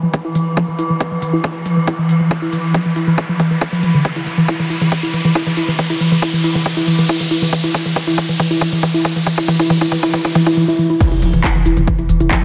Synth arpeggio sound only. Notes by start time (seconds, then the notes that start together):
0.03 F3
0.14 E3
0.25 E4
0.35 E3
0.57 F3
0.68 E3
0.79 E4
0.90 E3
1.12 F3
1.22 E3
1.33 E4
1.44 E3
1.66 F3
1.77 E3
1.87 E4
1.99 E3
2.20 F3
2.31 E3
2.42 E4
2.53 E3
2.74 F3
2.86 E3
2.96 E4
3.07 E3
3.29 F3
3.40 E3
3.51 E3
3.61 E3
3.73 F3
3.83 F3
3.94 D3
4.05 E3
4.16 E4
4.27 E3
4.38 E3
4.48 E4
4.60 E3
4.70 E4
4.81 E3
4.92 E3
5.03 E4
5.14 E3
5.25 E3
5.35 E4
5.47 E3
5.57 E4
5.68 E3
5.79 E3
5.90 E4
6.01 E3
6.12 E3
6.22 E4
6.33 E3
6.44 E4
6.55 E3
6.66 E3
6.77 E4
6.87 E3
6.99 E3
7.09 E4
7.20 E3
7.31 E4
7.42 E3
7.53 E3
7.64 E4
7.74 E3
7.86 E3
7.96 E3
8.07 E4
8.18 E3
8.29 E3
8.40 E3
8.51 E4
8.61 E3
8.73 E3
8.83 E3
8.94 E4
9.05 E3
9.16 E3
9.27 E3
9.38 E4
9.48 E3
9.60 E4
9.70 E3
9.81 E4
9.92 E3
10.03 E4
10.14 E3
10.25 E4
10.35 E3
10.46 E4
10.57 E3
10.68 E4
10.79 E3
10.90 E4
11.01 E3
11.12 E4
11.22 F3
11.33 E3
11.44 E4
11.55 E3
11.66 E4
11.77 F3
11.87 E3
11.99 E4
12.09 E3
12.20 E4
12.31 F3